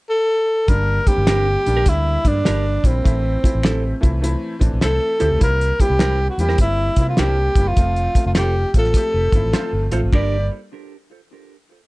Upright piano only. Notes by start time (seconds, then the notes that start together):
0.68 D3 G3 A#3 D4
1.07 D3 G3 A#3 C4
1.28 D3 G3 A#3 C4
1.66 D3 G3 A#3 D4
1.87 D3 G3 A#3 E4
2.24 D3 G3 A#3 D4
2.45 D3 G3 A#3 D4
2.83 D3 G3 A#3 E4
3.04 E3 A3 C4 E4
3.43 E3 A3 C4 E4
3.63 E3 A3 C4 G4
4.01 E3 A3 C4 E4
4.21 E3 A3 C4 E4
4.60 E3 A3 C4 D4
4.81 E3 A3 C4 E4
5.19 E3 A3 C4 G4
5.39 G3 A#3 C4 E4
5.80 G3 A#3 C4 E4
6.00 G3 A#3 C4 E4
6.39 G3 A#3 C4 E4
6.59 G3 A#3 C4 E4
6.98 G3 A#3 C4 E4
7.20 G3 A#3 C4 D4
7.57 G3 A#3 C4 E4
7.78 F3 A3 C4 F4
8.15 F3 A3 C4 F4
8.37 F3 A3 C4 F4
8.74 F3 A3 C4 F4
8.95 F3 A3 C4 G4
9.33 F3 A3 C4 E4
9.54 F3 A3 C4 F4
9.91 F3 A3 C4 F4
10.13 G3 A#3 D4 G4